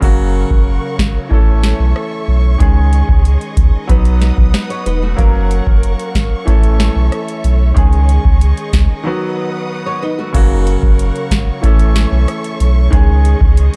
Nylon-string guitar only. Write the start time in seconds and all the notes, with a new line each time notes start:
4.70 C#5
4.86 D#4 B4
5.02 A3 F#4
9.86 C#5
10.02 D#4 B4
10.18 A3 F#4